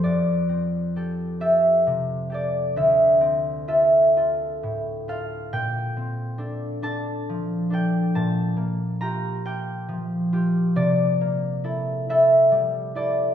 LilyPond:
\new Staff \with { instrumentName = "Harp" } { \time 6/8 \key f \major \tempo 4. = 45 << { <c'' d''>4. e''4 d''8 | e''4 e''4. f''8 | g''4. a''4 g''8 | a''4 bes''8 g''4. |
d''4. e''4 d''8 | } \\ { <f, f g' a'>8 c'8 <g' a'>8 <g' a'>8 c8 <g' a'>8 | d,8 c'8 <f' a'>8 <f' a'>8 a,8 <f' a'>8 | bes,8 c'8 <d' a'>8 <d' a'>8 f8 <d' a'>8 | bes,8 bes8 <f' g'>8 <f' g'>8 f8 <f' g'>8 |
c8 bes8 <e' a'>8 <e' a'>8 g8 <e' a'>8 | } >> }